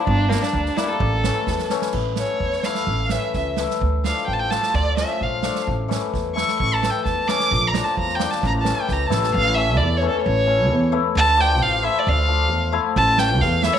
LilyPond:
<<
  \new Staff \with { instrumentName = "Violin" } { \time 2/4 \tempo 4 = 131 d'8 bes16 d'8. e'16 a'16~ | a'4. r8 | r8 cis''4 f''8~ | f''8 e''8 e''8 r8 |
r8 f''8 g''32 a''32 g''16 a''8 | d''8 e''8 f''4 | r4. cis'''8 | \tuplet 3/2 { cis'''8 a''8 g''8 } a''8 d'''8~ |
\tuplet 3/2 { d'''8 bes''8 a''8 bes''8 g''8 a''8 } | \tuplet 3/2 { bes''8 a''8 g''8 bes''8 a''4 } | f''8 e''8 d''8 cis''16 a'16 | cis''4. r8 |
a''8 g''8 f''8 e''16 d''16 | f''4. r8 | a''8 g''8 f''8 e''16 cis''16 | }
  \new Staff \with { instrumentName = "Hammered dulcimer" } { \time 2/4 r8 <g bes d'>16 r8. <g bes d'>16 r16 | r8 <e a cis'>16 r8. <e a cis'>16 r16 | r8 <e a cis'>16 r8. <e a e'>16 r16 | r8 <e a cis'>16 r8. <e a e'>16 r16 |
r8 <f a d'>16 r8. <f a f'>16 r16 | r8 <f a cis'>16 r8. <f a d'>16 r16 | r8 <e a cis'>16 r8. <e a e'>16 r16 | r8 <e a e'>16 r8. <e a cis'>16 r16 |
r8 <f bes d'>16 r8. <f bes d'>16 r16 | r8 <e a cis'>16 r8. <e a e'>16 r16 | r8 <e a cis'>16 r8. <e a cis'>16 r16 | r8 <e a cis'>16 r8. <e a e'>16 r16 |
r8 <f a d'>16 r8. <f a e'>16 r16 | r8 <f a d'>16 r8. <f a e'>16 r16 | r8 <e a cis'>16 r8. <e a e'>16 r16 | }
  \new Staff \with { instrumentName = "Upright bass" } { \clef bass \time 2/4 g,,4 d,8 r8 | a,,4 e,8 r8 | a,,4 e,4 | a,,4 cis,4 |
d,4 a,,4 | d,4 bes,,4 | a,,4 e,4 | a,,4 e,4 |
bes,,4 e,4 | a,,4 cis,8 a,,8 | a,,4 e,4 | a,,4 e,4 |
d,4 a,,4 | d,4 e,4 | a,,4 e,4 | }
  \new DrumStaff \with { instrumentName = "Drums" } \drummode { \time 2/4 bd8 sn16 sn16 bd16 sn16 sn8 | bd8 sn8 <bd sn>16 sn16 sn16 sn16 | <cymc bd>8 sn8 bd16 sn16 sn16 sn16 | bd8 sn8 <bd sn>8 sn16 sn16 |
bd8 sn16 sn16 bd8 sn16 sn16 | <bd sn>8 sn8 bd8 sn16 sn16 | bd8 sn8 <bd sn>8 sn16 sn16 | bd8 sn8 <bd sn>8 sn16 sn16 |
bd8 sn16 sn16 bd16 sn16 sn16 sn16 | <bd sn>8 sn8 <bd sn>8 sn16 sn16 | r4 r4 | r4 r4 |
r4 r4 | r4 r4 | bd8 sn8 <bd sn>8 sn16 sn16 | }
>>